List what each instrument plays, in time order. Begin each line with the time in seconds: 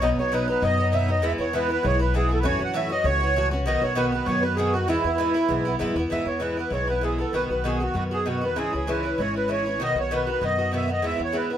0.02 upright bass B1, bouzouki B2 F#3 B3 D#4, accordion D#5
0.17 upright bass B1, bouzouki B3 D#4, accordion C#5
0.22 bouzouki F#3
0.32 bouzouki B2 F#3 B3 D#4, accordion B4
0.48 bouzouki F#3 B3 D#4, accordion B4
0.61 upright bass F#2, bouzouki B2 F#3 B3 D#4, accordion D#5
0.78 bouzouki F#3 B3 D#4
0.92 bouzouki B2 F#3 B3 D#4, accordion E5
1.08 bouzouki F#3 B3 D#4, accordion D#5
1.22 upright bass E2, bouzouki G#2 E3 B3 E4, accordion E5
1.38 upright bass E2, bouzouki E3 B3 E4, accordion C#5
1.53 bouzouki G#2 E3 B3 E4, accordion B4
1.68 bouzouki E3 B3 E4, accordion B4
1.83 upright bass B1, bouzouki G#2 E3 B3 E4, accordion C#5
1.99 bouzouki E3 B3 E4, accordion B4
2.14 bouzouki G#2 E3 B3 E4, accordion G#4
2.29 bouzouki E3 B3 E4
2.33 accordion A4
2.40 bouzouki A2, accordion B4
2.44 upright bass F#2, bouzouki E3 C#4 F#4, accordion C#5
2.59 upright bass F#2, bouzouki E3 C#4 F#4
2.64 accordion F#5
2.74 bouzouki A2 E3 C#4 F#4, accordion E5
2.90 bouzouki E3 C#4 F#4, accordion D#5
3.04 upright bass C#2, bouzouki A2 E3 C#4 F#4, accordion C#5
3.21 bouzouki E3 C#4 F#4
3.36 bouzouki A2 E3 C#4 F#4
3.51 bouzouki E3 C#4 F#4
3.65 upright bass B1, bouzouki B2 D#3 B3 F#4, accordion D#5
3.81 upright bass B1, bouzouki D#3 B3 F#4, accordion C#5
3.95 bouzouki B2 D#3 B3 F#4, accordion B4
4.12 bouzouki D#3 B3 F#4, accordion B4
4.26 upright bass F#2, bouzouki B2 D#3 B3 F#4, accordion C#5
4.42 bouzouki B3 F#4, accordion B4
4.46 bouzouki D#3
4.56 bouzouki B2 D#3 B3 F#4, accordion G#4
4.73 bouzouki B3 F#4, accordion F#4
4.77 bouzouki D#3
4.88 upright bass E2, bouzouki G#2 E3 B3 E4, accordion E4
5.04 upright bass E2, bouzouki E3 B3 E4
5.18 bouzouki G#2 E3 B3 E4
5.34 bouzouki E3 B3 E4
5.48 upright bass B1, bouzouki G#2 E3 B3 E4
5.65 bouzouki E3 B3 E4
5.79 upright bass F#2, bouzouki G#2 E3 B3 E4
5.96 upright bass E2, bouzouki E3 B3 E4
6.10 upright bass E2, bouzouki G#2 E3 B3 E4, accordion E5
6.25 upright bass E2, bouzouki E3 B3 E4, accordion C#5
6.40 bouzouki G#2 E3 B3 E4, accordion B4
6.57 bouzouki E3 B3 E4, accordion B4
6.70 upright bass B1, bouzouki G#2 E3 B3 E4, accordion C#5
6.87 bouzouki E3 B3 E4, accordion B4
7.01 bouzouki G#2 E3 B3 E4, accordion G#4
7.18 bouzouki E3 B3 E4, accordion A4
7.33 upright bass B1, bouzouki B2 D#3 B3 F#4, accordion B4
7.50 upright bass B1, bouzouki D#3 B3 F#4, accordion B4
7.64 bouzouki B2 D#3 B3 F#4, accordion G#4
7.80 bouzouki D#3 B3 F#4, accordion F#4
7.94 upright bass F#2, bouzouki B2 D#3 B3 F#4, accordion F#4
8.11 bouzouki D#3 B3 F#4, accordion G#4
8.26 bouzouki B2 D#3 B3 F#4, accordion F#4
8.41 bouzouki D#3 B3 F#4, accordion B4
8.56 upright bass C#2, bouzouki G#2 E3 C#4 E4, accordion G#4
8.73 upright bass C#2, bouzouki E3 C#4 E4, accordion G#4
8.87 bouzouki G#2 E3 C#4 E4, accordion B4
9.03 bouzouki E3 C#4 E4
9.18 upright bass G#1, bouzouki G#2 E3 C#4 E4, accordion C#5
9.34 bouzouki E3 C#4 E4, accordion B4
9.48 bouzouki G#2 E3 C#4 E4
9.52 accordion C#5
9.66 bouzouki E3 C#4 E4
9.79 upright bass B1, bouzouki B2 D#3 B3 F#4
9.83 accordion D#5
9.95 upright bass B1, bouzouki B3 F#4
10.00 bouzouki D#3, accordion C#5
10.11 bouzouki B2 D#3 B3 F#4
10.16 accordion B4
10.27 bouzouki D#3 B3 F#4, accordion B4
10.41 upright bass F#2, bouzouki B2 D#3 B3 F#4, accordion D#5
10.58 bouzouki D#3 B3 F#4
10.72 bouzouki B2 D#3 B3 F#4
10.77 accordion E5
10.88 bouzouki D#3 B3 F#4
10.93 accordion D#5
11.02 upright bass E2, bouzouki G#2 E3 B3 E4, accordion E5
11.18 upright bass E2, bouzouki E3 B3 E4
11.24 accordion C#5
11.32 bouzouki G#2 E3 B3 E4
11.37 accordion B4
11.50 bouzouki E3 B3 E4, accordion B4